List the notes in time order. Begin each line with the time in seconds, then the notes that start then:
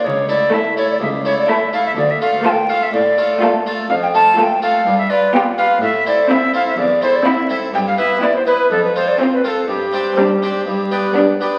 0.04 C#2 C#5
0.28 A3 E4 A4 D5
0.52 A3 E4 A4 E5
0.77 A3 E4 A4 C#5
0.90 D5
1.00 C#2 E5
1.25 A3 E4 A4 C#5
1.38 D5
1.49 A3 E4 A4 E5
1.73 A3 E4 A4 F5
1.86 E5
1.97 D2 D5
2.10 E5
2.21 A3 F4 A4 F5
2.45 A3 F4 A4 A5
2.49 G5
2.69 A3 F4 A4 F5
2.82 E5
2.93 A2 D5
3.18 A3 F4 A4
3.42 A3 F4 A4
3.66 A3 F4 A4
3.89 F2 F5
4.02 G5
4.14 A3 F4 A4 A5
4.38 A3 F4 A4 A5
4.43 G5
4.62 A3 F4 A4 F5
4.86 G2
4.98 E5
5.09 F4 B4 D5
5.34 B3 F4 G4 G5
5.57 F4 B4 F5
5.82 A2 E5
6.06 C4 E4 A4 D5
6.30 C4 E4 E5
6.54 C4 E4 A4 F5
6.67 E5
6.78 E2 D5
7.02 C4 E4 A4 C5
7.15 D5
7.26 C4 E4 E5
7.49 C4 E4 A4 E5
7.74 G2 G5
7.87 F5
7.98 B3 E4 B4 E5
8.22 B3 E4 D5
8.35 C5
8.46 B3 E4 B4
8.71 F2 A4
8.83 B4
8.95 C4 F4 A4 C5
9.07 D5
9.19 C4 F4 C5
9.33 B4
9.44 C4 F4 A4 A#4
9.68 G2 G4
9.93 C4 D4 G4
10.17 G3 C4 D4
10.42 C4 D4 G4
10.66 G2
10.91 B3 D4 G4
11.16 G3 B3 D4
11.40 B3 D4 G4